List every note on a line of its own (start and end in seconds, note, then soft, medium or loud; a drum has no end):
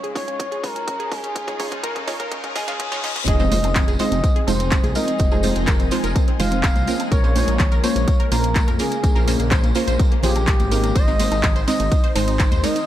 0.00 0.12 C#2 medium
0.00 3.24 C#3 medium
0.00 3.23 G#3 medium
0.00 3.24 D#4 medium
0.00 3.24 F4 medium
0.00 0.12 G#4 loud
0.00 closed hi-hat soft
0.00 riser medium
0.15 0.36 G#3 medium
0.15 0.24 C#4 medium
0.15 0.36 D#4 medium
0.15 0.36 F4 medium
0.15 0.36 C#5 loud
0.15 0.65 C#5 medium
0.15 kick loud
0.15 open hi-hat medium
0.28 0.37 C#2 medium
0.28 0.36 C#4 medium
0.28 closed hi-hat medium
0.39 0.48 C#4 medium
0.39 kick loud
0.39 closed hi-hat medium
0.52 0.60 G#4 medium
0.52 closed hi-hat soft
0.63 0.96 C#2 medium
0.63 0.84 G#3 medium
0.63 0.72 C#4 medium
0.63 0.84 D#4 medium
0.63 0.84 F4 medium
0.63 1.13 A#4 medium
0.63 0.84 C#5 loud
0.63 kick loud
0.63 open hi-hat loud
0.76 0.84 C#4 medium
0.76 closed hi-hat medium
0.87 0.96 C#4 medium
0.87 kick loud
0.87 closed hi-hat medium
1.00 1.32 C#2 medium
1.00 1.08 G#4 loud
1.00 closed hi-hat soft
1.11 1.45 G#3 medium
1.11 1.20 C#4 medium
1.11 1.45 D#4 medium
1.11 1.45 F4 medium
1.11 1.74 G#4 loud
1.11 1.45 A#4 medium
1.11 kick loud
1.11 open hi-hat medium
1.23 1.32 C#4 medium
1.23 closed hi-hat medium
1.35 1.68 C#2 loud
1.35 1.44 C#4 medium
1.35 kick loud
1.35 closed hi-hat medium
1.48 1.58 G#3 medium
1.48 1.58 D#4 medium
1.48 1.58 F4 medium
1.48 1.56 G#4 loud
1.48 1.58 C#5 medium
1.48 kick medium
1.48 closed hi-hat soft
1.59 1.72 G#3 medium
1.59 1.68 C#4 medium
1.59 1.72 D#4 medium
1.59 1.72 F4 medium
1.59 1.72 C#5 medium
1.59 kick loud
1.59 open hi-hat loud
1.72 2.04 C#2 medium
1.72 1.80 C#4 medium
1.72 kick medium
1.72 closed hi-hat medium
1.83 1.92 A#4 medium
1.83 kick loud
1.83 closed hi-hat medium
1.95 2.04 C#4 medium
1.95 kick medium
1.95 closed hi-hat soft
2.07 2.28 G#3 loud
2.07 2.16 C#4 medium
2.07 2.28 D#4 medium
2.07 2.28 F4 medium
2.07 2.28 C#5 loud
2.07 kick loud
2.07 open hi-hat medium
2.19 2.29 C#2 medium
2.19 2.28 A#4 medium
2.19 kick medium
2.19 closed hi-hat medium
2.31 2.40 C#4 medium
2.31 kick loud
2.31 closed hi-hat medium
2.31 reverse cymbal medium
2.44 2.52 C#4 medium
2.44 kick medium
2.44 closed hi-hat soft
2.55 2.88 C#2 medium
2.55 2.66 G#3 medium
2.55 2.66 D#4 medium
2.55 2.66 F4 medium
2.55 2.64 G#4 medium
2.55 3.18 G#4 loud
2.55 2.66 D#5 loud
2.55 kick loud
2.55 open hi-hat loud
2.68 2.89 G#3 loud
2.68 2.76 C#4 medium
2.68 2.89 D#4 loud
2.68 2.89 F4 medium
2.68 2.89 F5 loud
2.68 kick medium
2.68 closed hi-hat medium
2.80 2.88 C#4 medium
2.80 kick loud
2.80 closed hi-hat medium
2.92 3.24 G#1 loud
2.92 3.01 G#3 loud
2.92 3.01 D#4 medium
2.92 3.01 F4 medium
2.92 3.01 C#5 loud
2.92 kick medium
2.92 closed hi-hat soft
3.04 3.16 G#3 medium
3.04 3.12 C#4 medium
3.04 3.16 D#4 medium
3.04 3.16 F4 medium
3.04 3.16 D#5 medium
3.04 kick loud
3.04 open hi-hat medium
3.16 3.24 C#4 medium
3.16 kick medium
3.16 closed hi-hat medium
3.27 3.60 F1 loud
3.27 7.08 F3 medium
3.27 10.92 G#3 medium
3.27 7.08 D#4 medium
3.27 3.36 G#4 loud
3.27 7.08 G#4 medium
3.27 3.90 D#5 loud
3.27 kick loud
3.27 closed hi-hat medium
3.27 tambourine soft
3.27 impact medium
3.27 high woodblock soft
3.39 3.50 G#3 medium
3.39 3.48 C4 medium
3.39 3.50 D#4 medium
3.39 3.50 F4 medium
3.39 3.50 C5 medium
3.39 tambourine soft
3.52 3.64 G#3 medium
3.52 3.64 D#4 medium
3.52 3.64 F4 medium
3.52 3.64 C5 medium
3.52 open hi-hat loud
3.52 tambourine medium
3.52 high conga medium
3.63 3.96 F1 medium
3.63 3.72 C4 medium
3.63 closed hi-hat medium
3.63 tambourine soft
3.63 high woodblock medium
3.75 3.84 C4 medium
3.75 kick loud
3.75 clap loud
3.75 closed hi-hat medium
3.75 tambourine medium
3.75 low conga medium
3.88 3.96 G#4 loud
3.88 closed hi-hat soft
3.88 tambourine soft
3.99 4.20 G#3 loud
3.99 4.08 C4 medium
3.99 4.20 D#4 medium
3.99 4.20 F4 medium
3.99 4.20 C5 loud
3.99 4.43 D#5 medium
3.99 open hi-hat medium
3.99 tambourine medium
4.11 4.21 F1 medium
4.11 4.20 C4 medium
4.11 closed hi-hat medium
4.11 tambourine soft
4.11 high conga medium
4.11 high woodblock soft
4.24 4.32 C4 medium
4.24 kick loud
4.24 closed hi-hat medium
4.24 tambourine medium
4.36 4.44 G#4 medium
4.36 closed hi-hat soft
4.47 4.80 F1 loud
4.47 4.68 G#3 medium
4.47 4.56 C4 medium
4.47 4.68 D#4 medium
4.47 4.68 F4 medium
4.47 4.68 C5 loud
4.47 4.91 C5 loud
4.47 open hi-hat loud
4.47 tambourine medium
4.47 high woodblock medium
4.60 4.68 C4 medium
4.60 closed hi-hat medium
4.60 tambourine soft
4.71 4.80 C4 medium
4.71 kick loud
4.71 clap loud
4.71 closed hi-hat medium
4.71 tambourine medium
4.84 4.93 C2 loud
4.84 4.92 G#4 medium
4.84 closed hi-hat soft
4.84 tambourine soft
4.84 high conga loud
4.95 5.29 G#3 medium
4.95 5.04 C4 medium
4.95 5.29 D#4 medium
4.95 5.29 F4 medium
4.95 5.29 A#4 medium
4.95 5.58 D#5 loud
4.95 open hi-hat medium
4.95 tambourine loud
4.95 high woodblock soft
5.08 5.16 C4 medium
5.08 closed hi-hat medium
5.08 tambourine soft
5.18 5.52 F1 loud
5.18 5.28 C4 medium
5.18 kick loud
5.18 closed hi-hat medium
5.18 tambourine soft
5.31 5.42 G#3 medium
5.31 5.42 D#4 medium
5.31 5.42 F4 medium
5.31 5.40 G#4 loud
5.31 5.42 C5 medium
5.31 tambourine soft
5.31 high woodblock medium
5.43 5.56 G#3 medium
5.43 5.52 C4 medium
5.43 5.56 D#4 medium
5.43 5.56 F4 medium
5.43 5.56 C5 medium
5.43 open hi-hat loud
5.43 tambourine medium
5.43 high conga medium
5.56 5.88 F1 medium
5.56 5.64 C4 medium
5.56 closed hi-hat medium
5.56 tambourine soft
5.67 5.76 A#4 loud
5.67 kick loud
5.67 clap loud
5.67 closed hi-hat medium
5.67 tambourine medium
5.67 low conga medium
5.80 5.88 C4 medium
5.80 closed hi-hat soft
5.80 tambourine soft
5.80 high woodblock soft
5.91 6.12 G#3 loud
5.91 6.00 C4 medium
5.91 6.12 D#4 medium
5.91 6.12 F4 medium
5.91 6.12 C5 loud
5.91 open hi-hat loud
5.91 tambourine medium
6.04 6.13 F1 medium
6.04 6.12 A#4 medium
6.04 closed hi-hat medium
6.04 tambourine soft
6.04 high conga medium
6.16 6.24 C4 medium
6.16 kick loud
6.16 closed hi-hat medium
6.16 tambourine medium
6.16 high woodblock medium
6.28 6.36 C4 medium
6.28 closed hi-hat soft
6.40 6.72 F1 loud
6.40 6.60 G#3 medium
6.40 6.60 D#4 medium
6.40 6.60 F4 medium
6.40 6.48 C5 loud
6.40 6.60 C5 loud
6.40 7.02 F5 loud
6.40 open hi-hat loud
6.40 tambourine medium
6.40 low conga medium
6.51 6.60 C4 medium
6.51 closed hi-hat medium
6.51 tambourine soft
6.63 6.72 C4 medium
6.63 kick loud
6.63 clap loud
6.63 closed hi-hat medium
6.63 tambourine medium
6.63 high woodblock soft
6.75 6.85 C2 loud
6.75 closed hi-hat soft
6.75 tambourine soft
6.75 high conga medium
6.88 7.21 A#3 medium
6.88 6.96 C4 medium
6.88 7.21 C#4 medium
6.88 7.21 F4 medium
6.88 7.21 A#4 medium
6.88 open hi-hat loud
6.88 tambourine medium
7.00 7.08 C4 medium
7.00 closed hi-hat medium
7.00 tambourine soft
7.00 high woodblock medium
7.12 7.44 A#1 loud
7.12 10.92 C#3 medium
7.12 10.92 A#3 medium
7.12 7.20 A#4 loud
7.12 7.74 C#5 loud
7.12 kick loud
7.12 closed hi-hat medium
7.12 tambourine soft
7.24 7.32 A#3 medium
7.24 7.34 A#3 medium
7.24 7.34 C#4 medium
7.24 7.34 F4 medium
7.24 7.34 C5 medium
7.24 tambourine soft
7.36 7.48 A#3 medium
7.36 7.48 C#4 medium
7.36 7.48 F4 medium
7.36 7.48 C5 medium
7.36 open hi-hat loud
7.36 tambourine medium
7.36 high conga medium
7.48 7.80 A#1 medium
7.48 7.56 A#3 medium
7.48 closed hi-hat medium
7.48 tambourine soft
7.48 high woodblock soft
7.59 7.68 A#3 medium
7.59 kick loud
7.59 clap loud
7.59 closed hi-hat medium
7.59 tambourine medium
7.59 low conga medium
7.71 7.80 A#4 loud
7.71 closed hi-hat soft
7.71 tambourine soft
7.83 7.92 A#3 medium
7.83 8.04 A#3 medium
7.83 8.04 C#4 medium
7.83 8.04 F4 medium
7.83 8.04 C5 loud
7.83 8.27 C#5 medium
7.83 open hi-hat loud
7.83 tambourine loud
7.83 high woodblock medium
7.96 8.05 A#1 medium
7.96 8.04 A#3 medium
7.96 closed hi-hat medium
7.96 tambourine soft
7.96 high conga medium
8.08 8.16 A#3 medium
8.08 kick loud
8.08 closed hi-hat medium
8.08 tambourine soft
8.20 8.28 A#4 loud
8.20 closed hi-hat soft
8.31 8.64 A#1 medium
8.31 8.40 A#3 medium
8.31 8.52 A#3 medium
8.31 8.52 C#4 medium
8.31 8.52 F4 medium
8.31 8.75 A#4 loud
8.31 8.52 C5 loud
8.31 open hi-hat loud
8.31 tambourine loud
8.31 high woodblock soft
8.44 8.52 A#3 medium
8.44 closed hi-hat medium
8.44 tambourine soft
8.55 8.64 A#3 medium
8.55 kick loud
8.55 clap loud
8.55 closed hi-hat medium
8.55 tambourine medium
8.68 8.77 F2 loud
8.68 8.76 A#4 medium
8.68 closed hi-hat soft
8.68 tambourine soft
8.68 high conga loud
8.68 high woodblock medium
8.79 8.88 A#3 medium
8.79 9.13 A#3 medium
8.79 9.13 C#4 medium
8.79 9.13 F4 medium
8.79 9.42 G#4 loud
8.79 9.13 A#4 medium
8.79 open hi-hat loud
8.79 tambourine medium
8.92 9.00 A#3 medium
8.92 closed hi-hat medium
8.92 tambourine soft
9.03 9.36 A#1 loud
9.03 9.12 A#3 medium
9.03 kick loud
9.03 closed hi-hat medium
9.03 tambourine medium
9.15 9.26 A#3 medium
9.15 9.26 C#4 medium
9.15 9.26 F4 medium
9.15 9.24 A#4 loud
9.15 9.26 C5 medium
9.15 tambourine soft
9.15 high woodblock soft
9.27 9.36 A#3 medium
9.27 9.40 A#3 medium
9.27 9.40 C#4 medium
9.27 9.40 F4 medium
9.27 9.40 C5 medium
9.27 open hi-hat loud
9.27 tambourine loud
9.27 high conga medium
9.39 9.72 A#1 medium
9.39 9.48 A#3 medium
9.39 closed hi-hat medium
9.39 tambourine soft
9.51 9.60 C5 loud
9.51 kick loud
9.51 clap loud
9.51 closed hi-hat medium
9.51 tambourine medium
9.51 low conga loud
9.51 high woodblock medium
9.63 9.72 A#3 medium
9.63 closed hi-hat soft
9.63 tambourine soft
9.75 9.84 A#3 medium
9.75 9.96 A#3 medium
9.75 9.96 C#4 medium
9.75 9.96 F4 medium
9.75 9.96 C5 loud
9.75 open hi-hat loud
9.75 tambourine loud
9.87 9.97 A#1 medium
9.87 9.96 C5 medium
9.87 closed hi-hat soft
9.87 tambourine soft
9.87 high conga medium
9.99 10.08 A#3 medium
9.99 kick loud
9.99 closed hi-hat medium
9.99 tambourine soft
9.99 high woodblock soft
10.12 10.20 A#3 medium
10.12 closed hi-hat soft
10.23 10.56 A#1 medium
10.23 10.44 A#3 medium
10.23 10.44 C#4 medium
10.23 10.44 F4 medium
10.23 10.97 G4 loud
10.23 10.32 G#4 medium
10.23 10.44 C5 loud
10.23 open hi-hat loud
10.23 tambourine medium
10.23 low conga medium
10.36 10.44 A#3 medium
10.36 closed hi-hat soft
10.36 tambourine soft
10.36 high woodblock medium
10.47 10.56 A#3 medium
10.47 kick loud
10.47 clap loud
10.47 closed hi-hat medium
10.47 tambourine medium
10.60 10.92 G#1 loud
10.60 closed hi-hat soft
10.60 tambourine soft
10.60 high conga medium
10.71 11.05 G#3 medium
10.71 10.80 A#3 medium
10.71 11.05 C4 medium
10.71 11.05 D#4 medium
10.71 11.05 A#4 medium
10.71 open hi-hat medium
10.71 tambourine loud
10.84 10.92 A#3 medium
10.84 closed hi-hat medium
10.84 tambourine soft
10.84 high woodblock soft
10.95 11.28 G#1 loud
10.95 12.86 D#3 medium
10.95 12.86 G#3 medium
10.95 12.86 C4 medium
10.95 11.04 C5 loud
10.95 11.58 D#5 loud
10.95 kick loud
10.95 closed hi-hat medium
10.95 ride medium
10.95 tambourine medium
10.95 high woodblock soft
11.08 11.18 G#3 medium
11.08 11.18 C4 medium
11.08 11.18 D#4 medium
11.08 11.16 D#4 medium
11.08 11.18 C5 medium
11.08 tambourine soft
11.20 11.32 G#3 medium
11.20 11.32 C4 medium
11.20 11.32 D#4 medium
11.20 11.32 C5 medium
11.20 open hi-hat loud
11.20 ride medium
11.20 tambourine medium
11.20 high conga medium
11.32 11.64 G#1 medium
11.32 11.40 D#4 medium
11.32 closed hi-hat medium
11.32 tambourine soft
11.32 high woodblock medium
11.43 11.52 D#4 medium
11.43 kick loud
11.43 clap loud
11.43 closed hi-hat medium
11.43 ride medium
11.43 tambourine medium
11.43 low conga loud
11.56 11.64 C5 loud
11.56 closed hi-hat soft
11.56 tambourine soft
11.68 11.88 G#3 loud
11.68 11.88 C4 medium
11.68 11.76 D#4 medium
11.68 11.88 D#4 medium
11.68 11.88 C5 loud
11.68 12.11 D#5 medium
11.68 open hi-hat medium
11.68 ride medium
11.68 tambourine medium
11.80 11.89 G#1 medium
11.80 11.88 D#4 medium
11.80 closed hi-hat soft
11.80 tambourine soft
11.80 high conga medium
11.80 high woodblock soft
11.92 12.00 D#4 medium
11.92 kick loud
11.92 closed hi-hat medium
11.92 ride medium
11.92 tambourine medium
12.04 12.12 C5 medium
12.04 closed hi-hat soft
12.15 12.48 G#1 medium
12.15 12.36 G#3 medium
12.15 12.36 C4 medium
12.15 12.24 D#4 medium
12.15 12.36 D#4 medium
12.15 12.65 C5 medium
12.15 12.36 C5 loud
12.15 open hi-hat loud
12.15 ride medium
12.15 tambourine loud
12.15 high woodblock medium
12.28 12.36 D#4 medium
12.28 closed hi-hat soft
12.28 tambourine soft
12.39 12.48 D#4 medium
12.39 kick loud
12.39 clap loud
12.39 closed hi-hat medium
12.39 ride medium
12.39 tambourine soft
12.52 12.61 D#2 loud
12.52 12.60 C5 medium
12.52 closed hi-hat soft
12.52 tambourine soft
12.52 high conga medium
12.63 12.86 G#3 medium
12.63 12.86 C4 medium
12.63 12.72 D#4 medium
12.63 12.86 D#4 medium
12.63 12.86 A#4 medium
12.63 12.86 D#5 loud
12.63 open hi-hat medium
12.63 ride medium
12.63 tambourine loud
12.63 high woodblock soft
12.76 12.84 D#4 medium
12.76 closed hi-hat medium
12.76 tambourine soft